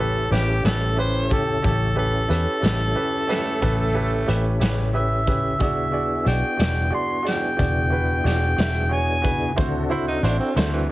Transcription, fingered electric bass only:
0.00 0.28 A1 medium
0.31 0.62 A1 medium
0.64 1.59 A1 medium
1.65 2.26 A1 medium
2.30 2.45 E2 medium
2.63 2.93 A1 medium
3.62 4.24 A1 medium
4.28 4.59 A1 medium
4.61 5.61 A1 medium
5.61 6.23 E1 medium
6.26 6.41 B1 medium
6.59 6.90 E1 medium
7.59 8.21 E1 medium
8.24 8.55 E1 medium
8.58 9.58 E1 medium
9.58 10.20 D2 medium
10.23 10.38 A1 medium
10.56 10.86 D2 medium

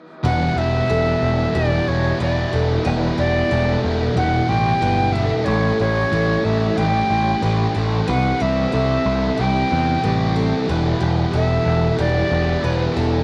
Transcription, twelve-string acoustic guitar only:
0.25 0.89 B4 medium
0.58 0.93 G4 medium
0.90 1.55 A4 medium
1.55 2.56 G4 medium
2.20 2.52 B4 medium
2.53 2.84 A4 medium
2.85 3.18 B4 medium
3.18 3.54 G4 medium
3.51 4.16 A4 medium
4.17 5.18 G4 medium
4.82 5.14 B4 medium
5.15 5.45 A4 medium
5.46 5.79 A4 medium
5.80 6.16 G4 medium
6.13 6.78 A4 medium
6.78 7.78 G4 medium
7.42 7.74 B4 medium
7.75 8.07 A4 medium
8.08 8.72 B4 medium
8.40 8.75 G4 medium
8.72 9.38 A4 medium
9.37 10.39 G4 medium
10.04 10.36 B4 medium
10.36 10.68 A4 medium
10.69 11.33 B4 medium
11.01 11.36 G4 medium
11.33 11.98 A4 medium
11.99 13.00 G4 medium
12.64 12.96 B4 medium
12.97 13.24 A4 medium

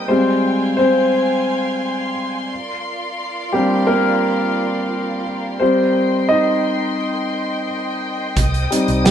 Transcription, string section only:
0.00 2.46 G5 medium
0.09 2.48 F5 medium
0.09 2.48 G#5 medium
0.09 5.57 C6 medium
2.50 5.58 F4 medium
2.50 8.33 A#4 medium
2.50 5.58 D5 medium
2.50 5.58 F5 medium
5.61 9.11 D#5 medium
5.61 9.11 G5 medium
5.61 8.34 C6 medium
8.37 9.11 C5 medium
8.37 9.11 D#6 medium

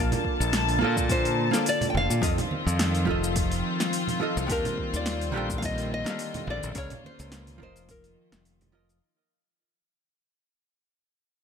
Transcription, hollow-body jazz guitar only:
0.00 0.77 A#3 medium
0.00 0.78 F4 medium
0.00 0.80 D5 loud
0.00 0.79 A5 medium
0.79 1.48 A#3 loud
0.79 1.50 F4 medium
0.79 1.50 A4 medium
0.84 1.51 F5 loud
1.51 2.19 A#3 medium
1.51 2.20 F4 medium
1.51 2.20 A4 medium
1.56 2.21 D5 medium
2.22 2.39 F3 medium
2.22 2.39 F4 medium
2.22 2.40 A4 medium
2.22 2.40 D#5 loud
3.05 4.17 F3 medium
3.05 4.18 F4 medium
3.05 4.19 A4 medium
3.10 4.20 D#5 medium
4.20 4.46 F3 medium
4.20 4.46 F4 medium
4.20 4.47 A4 medium
4.20 4.47 D#5 loud
4.47 5.30 D#3 loud
4.47 5.30 D4 medium
4.47 5.31 G4 medium
4.51 5.33 F5 loud
4.51 5.32 A5 medium
5.32 6.02 D#3 loud
5.32 6.02 D4 loud
5.32 6.03 G4 medium
5.32 6.03 A4 medium
5.37 6.04 G5 loud
6.04 6.72 D3 medium
6.04 6.72 D#3 medium
6.04 6.73 G4 medium
6.04 6.73 A4 medium
6.09 6.74 F5 medium
6.75 6.92 C#4 medium
6.75 6.92 G#4 medium
6.75 6.93 A#4 medium
6.75 6.93 F5 loud
7.58 8.70 F3 medium
7.58 8.71 F4 medium
7.58 8.72 A#4 medium
7.64 8.73 D#5 loud
8.72 8.98 F3 medium
8.72 8.99 F4 medium
8.72 8.99 A#4 medium
8.72 9.00 D#5 loud

